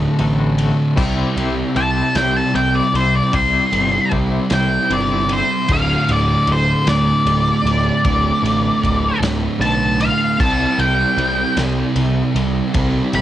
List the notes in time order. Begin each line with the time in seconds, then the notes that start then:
Already playing: D2 A2 D3 A3 F#4
0.19 A1 A2 D3 A3 F#4, ride
0.57 D3 A3 F#4, ride
0.96 C2 C3 G3 C4 E4 G4 C5, kick, crash
1.36 C2 C4 E4 G4 C5, ride
1.76 C2 C4 E4 G4 C5 A5, ride
2.15 C2 C4 E4 G4 C5 G5, snare, ride
2.37 A5
2.55 C2 C4 E4 G4 C5 G5, ride
2.76 D5
2.93 C2 C4 E4 G4 C5, ride
3.15 D5
3.33 C2 C3 G3 C4 E4 G4 C5 C6, kick, ride
3.71 G1 C4 E4 G4 C5, ride
4.11 C2 C4 E4 G4 C5, kick, ride
4.49 C2 C4 E4 G4 C5, snare, ride
4.54 G5
4.90 G1 C4 E4 G4 C5 D5, ride
5.29 C4 E4 G4 C5, ride
5.33 C5
5.68 D1 D2 A2 D3 A3 F#4 F5, kick, crash
6.09 D1 D5, ride
6.47 D1, ride
6.52 C5
6.87 D2 D5, snare, ride
7.25 D1, ride
7.63 D1, ride
8.04 D1 D2 A2 D3 A3 F#4, kick, ride
8.43 A1, ride
8.84 D1, kick, ride
9.20 D1, snare, ride
9.59 B1 A5, ride
10.00 F5, ride
10.39 C2 C3 G3 C4 E4 G4 C5 A5, kick, crash
10.78 C2 G5, ride
11.17 C2, ride
11.57 C2, snare, ride
11.96 C2, ride
12.35 C2, ride
12.74 C2 C3 G3 C4 E4 G4 C5, kick, ride
13.13 G1 B5, ride